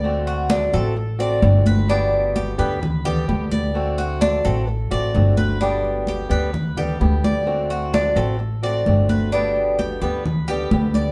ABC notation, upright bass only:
X:1
M:4/4
L:1/8
Q:1/4=129
K:G
V:1 name="Upright bass" clef=bass
D,,3 A,,,3 G,,,2- | G,,,3 D,,3 D,,2- | D,,3 A,,,2 A,,, G,,,2- | G,,,3 D,,3 D,,2- |
D,,3 A,,,3 G,,,2- | G,,,3 D,,3 D,,2 |]